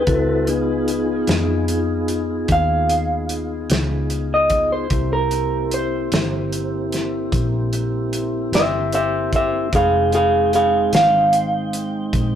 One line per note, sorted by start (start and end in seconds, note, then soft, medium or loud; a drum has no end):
0.00 1.25 B4 medium
0.07 1.25 C#2 medium
0.07 0.48 C4 medium
0.07 0.48 E4 medium
0.07 0.48 F#4 medium
0.07 0.48 A4 medium
0.07 kick medium
0.07 closed hi-hat medium
0.47 4.87 B3 medium
0.47 4.87 D#4 medium
0.47 4.87 F4 medium
0.47 4.88 G#4 medium
0.47 closed hi-hat medium
0.88 closed hi-hat soft
1.27 2.45 F2 medium
1.27 snare medium
1.27 closed hi-hat medium
1.68 closed hi-hat medium
2.08 closed hi-hat medium
2.48 3.66 D#2 medium
2.48 4.28 F5 medium
2.48 kick medium
2.48 closed hi-hat medium
2.89 closed hi-hat medium
3.29 closed hi-hat soft
3.70 4.87 C#2 medium
3.70 snare medium
3.70 closed hi-hat medium
4.10 closed hi-hat medium
4.34 4.71 D#5 medium
4.50 kick medium
4.50 closed hi-hat medium
4.72 5.11 C5 medium
4.90 6.08 C2 medium
4.90 9.69 A#3 medium
4.90 9.69 C4 medium
4.90 9.69 E4 medium
4.90 9.69 G4 medium
4.90 kick medium
4.90 closed hi-hat medium
5.13 5.71 A#4 medium
5.31 closed hi-hat soft
5.71 8.10 C5 medium
5.71 closed hi-hat medium
6.12 7.29 G1 medium
6.12 snare medium
6.12 closed hi-hat medium
6.53 closed hi-hat medium
6.92 snare soft
6.92 closed hi-hat soft
7.32 8.49 A#1 medium
7.32 kick medium
7.32 closed hi-hat medium
7.73 closed hi-hat medium
8.13 closed hi-hat medium
8.52 9.69 G1 medium
8.52 8.93 C5 medium
8.52 8.93 E5 medium
8.52 snare medium
8.52 closed hi-hat medium
8.93 9.31 C5 medium
8.93 9.33 E5 medium
8.93 closed hi-hat medium
9.33 9.71 C5 medium
9.33 9.73 E5 medium
9.33 kick medium
9.33 closed hi-hat medium
9.73 10.89 F1 medium
9.73 12.35 G#3 medium
9.73 12.35 C4 medium
9.73 12.35 D#4 medium
9.73 10.11 G#4 medium
9.73 10.13 F5 medium
9.73 12.35 G5 medium
9.73 kick medium
9.73 closed hi-hat medium
10.12 10.51 G#4 medium
10.12 10.53 F5 medium
10.12 closed hi-hat medium
10.53 10.91 G#4 medium
10.53 10.93 F5 medium
10.53 closed hi-hat medium
10.93 12.09 G#1 medium
10.93 12.35 F5 medium
10.93 snare loud
10.93 closed hi-hat medium
11.33 closed hi-hat medium
11.73 closed hi-hat medium
12.13 12.35 A#1 medium
12.13 kick medium
12.13 closed hi-hat medium